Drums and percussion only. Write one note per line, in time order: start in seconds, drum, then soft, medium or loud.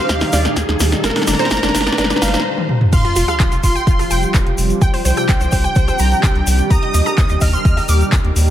0.09 kick loud
0.09 snare loud
0.09 closed hi-hat medium
0.09 shaker soft
0.21 snare medium
0.21 open hi-hat medium
0.21 shaker soft
0.32 snare loud
0.32 open hi-hat loud
0.32 shaker medium
0.45 snare medium
0.45 closed hi-hat soft
0.45 shaker soft
0.56 kick loud
0.56 snare loud
0.56 closed hi-hat loud
0.56 shaker medium
0.69 snare medium
0.69 closed hi-hat soft
0.80 snare loud
0.80 open hi-hat loud
0.80 shaker medium
0.92 snare loud
0.92 closed hi-hat soft
0.92 shaker soft
1.04 kick loud
1.04 snare medium
1.04 closed hi-hat medium
1.04 shaker soft
1.10 snare medium
1.16 snare medium
1.16 open hi-hat medium
1.22 snare medium
1.27 snare loud
1.27 open hi-hat loud
1.27 shaker medium
1.33 snare medium
1.39 snare loud
1.39 closed hi-hat soft
1.39 shaker soft
1.45 snare loud
1.50 kick loud
1.50 snare loud
1.50 closed hi-hat loud
1.50 shaker medium
1.57 snare loud
1.63 snare loud
1.63 closed hi-hat soft
1.63 shaker soft
1.69 snare loud
1.74 kick medium
1.74 snare loud
1.74 open hi-hat loud
1.74 shaker medium
1.81 snare loud
1.86 snare medium
1.86 shaker soft
1.92 snare medium
1.98 kick loud
1.98 snare loud
1.98 closed hi-hat medium
1.98 shaker soft
2.04 snare medium
2.10 snare loud
2.10 closed hi-hat soft
2.10 shaker soft
2.16 snare medium
2.22 snare loud
2.22 open hi-hat loud
2.22 shaker loud
2.28 snare loud
2.34 snare loud
2.34 closed hi-hat soft
2.34 shaker soft
2.40 snare loud
2.57 high tom soft
2.69 mid tom medium
2.81 mid tom medium
2.93 kick loud
2.93 closed hi-hat loud
2.93 crash loud
2.93 shaker medium
3.05 closed hi-hat soft
3.16 open hi-hat loud
3.16 shaker loud
3.28 cross-stick medium
3.28 closed hi-hat soft
3.28 shaker soft
3.40 kick loud
3.40 clap loud
3.40 closed hi-hat loud
3.40 shaker soft
3.52 closed hi-hat soft
3.52 shaker soft
3.63 kick medium
3.63 open hi-hat loud
3.63 shaker medium
3.76 closed hi-hat soft
3.76 shaker soft
3.87 kick loud
3.87 closed hi-hat medium
3.87 shaker soft
3.99 cross-stick medium
3.99 open hi-hat medium
3.99 shaker soft
4.11 open hi-hat loud
4.11 shaker loud
4.22 closed hi-hat soft
4.22 shaker soft
4.34 kick loud
4.34 clap loud
4.34 closed hi-hat loud
4.34 shaker medium
4.47 closed hi-hat soft
4.58 open hi-hat loud
4.58 shaker medium
4.70 closed hi-hat soft
4.70 shaker soft
4.81 kick loud
4.81 closed hi-hat medium
4.81 shaker medium
4.94 open hi-hat medium
5.05 open hi-hat loud
5.05 shaker loud
5.17 cross-stick medium
5.17 closed hi-hat soft
5.17 shaker soft
5.29 kick loud
5.29 clap loud
5.29 closed hi-hat loud
5.29 shaker medium
5.41 closed hi-hat soft
5.41 shaker soft
5.52 kick medium
5.52 open hi-hat loud
5.52 shaker medium
5.65 closed hi-hat soft
5.65 shaker soft
5.75 kick loud
5.75 closed hi-hat medium
5.75 shaker medium
5.88 cross-stick medium
5.88 closed hi-hat soft
5.88 shaker soft
5.99 open hi-hat loud
5.99 shaker loud
6.12 closed hi-hat soft
6.12 shaker soft
6.23 kick loud
6.23 clap loud
6.23 closed hi-hat loud
6.23 shaker medium
6.35 closed hi-hat soft
6.47 open hi-hat loud
6.47 shaker loud
6.58 closed hi-hat soft
6.58 shaker soft
6.71 kick loud
6.71 closed hi-hat medium
6.71 shaker medium
6.83 closed hi-hat soft
6.94 open hi-hat loud
6.94 shaker loud
7.07 cross-stick medium
7.07 closed hi-hat soft
7.07 shaker soft
7.18 kick loud
7.18 clap loud
7.18 closed hi-hat loud
7.18 shaker medium
7.29 closed hi-hat soft
7.29 shaker soft
7.41 kick medium
7.41 open hi-hat loud
7.41 shaker loud
7.54 shaker soft
7.65 kick loud
7.65 closed hi-hat medium
7.65 shaker soft
7.77 cross-stick medium
7.77 open hi-hat medium
7.77 shaker soft
7.89 open hi-hat loud
7.89 shaker medium
8.01 closed hi-hat soft
8.01 shaker soft
8.12 kick loud
8.12 clap loud
8.12 closed hi-hat loud
8.12 shaker medium
8.25 closed hi-hat soft
8.36 open hi-hat loud
8.36 shaker medium